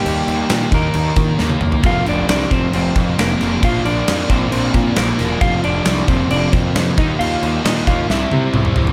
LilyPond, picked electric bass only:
\new Staff \with { instrumentName = "Picked electric bass" } { \clef bass \time 4/4 \key ees \lydian \tempo 4 = 134 ees,8 ees,8 bes,8 ees,8 ees,8 ees8 ees,8 ees,8 | f,,8 f,,8 c,8 f,,8 f,,8 f,8 f,,8 f,,8 | bes,,8 bes,,8 f,8 bes,,8 bes,,8 bes,8 bes,,8 e,,8 | f,,8 f,,8 c,8 f,,8 f,,8 f,8 f,8 ees,8 |
ees,8 ees,8 bes,8 ees,8 c,8 c8 c,8 c,8 | }